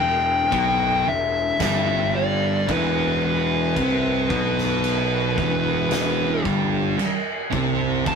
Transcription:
0.00 0.49 E1 medium
0.00 0.41 E2 medium
0.00 1.11 G5 loud
0.50 1.03 B1 medium
0.50 1.04 B2 medium
0.50 1.04 B3 loud
0.50 kick loud
0.50 crash medium
1.06 1.57 E1 medium
1.06 1.49 E2 medium
1.06 1.61 E5 medium
1.59 2.65 G1 medium
1.59 2.66 G2 medium
1.59 2.67 G3 loud
1.59 2.16 E5 loud
1.59 kick loud
1.59 snare loud
1.59 crash medium
2.16 2.71 D5 medium
2.68 3.73 E1 loud
2.68 3.75 E2 medium
2.68 3.75 E3 loud
2.68 3.24 B4 medium
2.68 kick loud
2.68 crash medium
3.26 6.43 B4 medium
3.75 4.27 C2 medium
3.75 4.28 C3 medium
3.75 4.28 C4 medium
3.75 kick loud
3.75 crash medium
4.29 5.34 B1 medium
4.29 5.36 B2 medium
4.29 5.36 B3 medium
4.29 kick loud
4.58 snare soft
4.84 crash medium
5.35 6.41 E1 loud
5.35 6.43 E2 loud
5.35 6.43 E3 loud
5.35 kick loud
5.91 snare loud
5.91 crash medium
6.44 6.95 G1 medium
6.44 6.97 G2 medium
6.44 6.97 G3 loud
6.44 kick loud
6.98 muted distorted electric guitar stroke medium
6.98 muted picked electric bass stroke soft
6.98 crash medium
7.51 8.03 C2 medium
7.51 8.04 C3 medium
7.51 8.05 C4 loud
7.51 kick loud
8.06 8.15 E1 medium
8.06 8.15 E2 medium
8.06 8.15 E3 medium
8.06 8.15 A5 loud
8.06 kick loud
8.06 crash medium

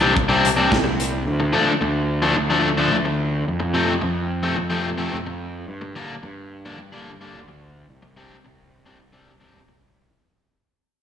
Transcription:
0.00 0.12 C2 medium
0.00 0.14 C3 medium
0.00 0.14 G3 medium
0.00 0.14 C4 medium
0.00 0.14 D4 medium
0.15 0.67 C2 medium
0.15 muted overdriven electric guitar stroke soft
0.15 kick loud
0.29 0.48 C3 medium
0.29 0.47 G3 medium
0.29 0.47 C4 medium
0.29 0.47 D4 medium
0.45 closed hi-hat medium
0.56 0.75 C3 medium
0.56 0.75 G3 medium
0.56 0.75 C4 medium
0.56 0.75 D4 medium
0.72 1.22 C2 medium
0.72 kick medium
0.72 snare loud
0.84 muted overdriven electric guitar stroke soft
1.00 closed hi-hat medium
1.25 1.51 D2 medium
1.40 muted overdriven electric guitar stroke soft
1.53 1.71 D3 medium
1.53 1.71 F3 medium
1.53 1.72 A3 medium
1.53 1.72 D4 medium
1.81 2.32 D2 medium
1.81 muted overdriven electric guitar stroke soft
2.22 2.35 D3 medium
2.22 2.36 F3 medium
2.22 2.36 A3 medium
2.22 2.36 D4 medium
2.36 2.88 D2 medium
2.36 muted overdriven electric guitar stroke soft
2.50 2.69 D3 medium
2.50 2.68 F3 medium
2.50 2.68 A3 medium
2.50 2.68 D4 medium
2.77 2.96 D3 medium
2.77 2.96 F3 medium
2.77 2.96 A3 medium
2.77 2.95 D4 medium
2.92 3.43 D2 medium
3.05 muted overdriven electric guitar stroke soft
3.48 3.99 F2 medium
3.60 muted overdriven electric guitar stroke soft
3.74 3.92 C3 medium
3.74 3.92 F3 medium
3.74 3.92 A3 medium
3.74 3.93 C4 medium
4.01 4.54 F2 medium
4.01 muted overdriven electric guitar stroke soft
4.43 4.56 C3 medium
4.43 4.56 F3 medium
4.43 4.56 A3 medium
4.43 4.57 C4 medium
4.57 5.09 F2 medium
4.57 muted overdriven electric guitar stroke soft
4.70 4.89 C3 medium
4.70 4.89 F3 medium
4.70 4.89 A3 medium
4.70 4.88 C4 medium
4.98 5.17 C3 medium
4.98 5.16 F3 medium
4.98 5.16 A3 medium
4.98 5.16 C4 medium
5.13 5.64 F2 medium
5.26 muted overdriven electric guitar stroke soft
5.68 5.93 G2 medium
5.81 muted overdriven electric guitar stroke soft
5.96 6.13 D3 medium
5.96 6.13 G3 medium
5.96 6.14 A#3 medium
5.96 6.14 D4 medium
6.23 6.74 G2 medium
6.23 muted overdriven electric guitar stroke soft
6.66 6.78 D3 medium
6.66 6.78 G3 medium
6.66 6.79 A#3 medium
6.66 6.79 D4 medium
6.78 7.35 G2 medium
6.78 muted overdriven electric guitar stroke soft
6.92 7.11 D3 medium
6.92 7.11 G3 medium
6.92 7.10 A#3 medium
6.92 7.10 D4 medium
7.21 7.39 D3 medium
7.21 7.39 G3 medium
7.21 7.38 A#3 medium
7.21 7.38 D4 medium
7.34 7.85 D2 medium
7.48 muted overdriven electric guitar stroke soft
7.89 8.40 C2 medium
8.02 muted overdriven electric guitar stroke soft
8.17 8.35 C3 medium
8.17 8.35 G3 medium
8.17 8.35 C4 medium
8.17 8.35 D4 medium
8.45 8.96 C2 medium
8.45 muted overdriven electric guitar stroke soft
8.86 8.99 C3 medium
8.86 8.99 G3 medium
8.86 8.99 C4 medium
8.86 8.99 D4 medium
9.00 9.51 C2 medium
9.00 muted overdriven electric guitar stroke soft
9.13 9.31 C3 medium
9.13 9.31 G3 medium
9.13 9.31 C4 medium
9.13 9.31 D4 medium
9.40 9.59 C3 medium
9.40 9.59 G3 medium
9.40 9.59 C4 medium
9.40 9.59 D4 medium
9.55 10.06 C2 medium
9.68 muted overdriven electric guitar stroke soft

